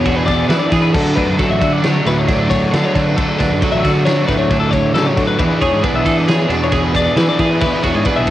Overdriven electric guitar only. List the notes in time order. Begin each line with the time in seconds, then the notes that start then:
0.05 E3 B3 D4 G#4
0.27 B3 D4 G#4
0.49 E3 B3 D4 G#4
0.72 B3 D4 G#4
0.95 D3 F#3 A3 D4 F#4
1.16 A3 D4 F#4
1.39 F#3 A3 D4 F#4
1.61 A3 D4 F#4
1.83 D3 F#3 A3 D4 F#4
2.06 A3 D4 F#4
2.28 D3 F#3 A3 D4 F#4
2.50 A3 D4 F#4
2.72 D3 F#3 A3 D4 F#4
2.94 A3 D4 F#4
3.16 D3 F#3 A3 D4 F#4
3.39 A3 D4 F#4
3.62 F#3 A3 D4 F#4
3.83 A3 D4 F#4
4.06 D3 F#3 A3 D4 F#4
4.28 A3 D4 F#4
4.50 D3 F#3 A3 D4 F#4
4.72 A3 D4 F#4
4.95 D3 F#3 A3 D4 F#4
5.17 A3 D4 F#4
5.39 E3 B3 D4 G#4
5.60 B3 D4 G#4
5.82 E3 B3 D4 G#4
6.05 B3 D4 G#4
6.27 E3 B3 D4 G#4
6.50 B3 D4 G#4
6.72 E3 B3 D4 G#4
6.95 B3 D4 G#4
7.18 E3 B3 D4 G#4
7.40 B3 D4 G#4
7.62 E3 B3 D4 G#4
7.84 B3 D4 G#4
8.05 E3 B3 D4 G#4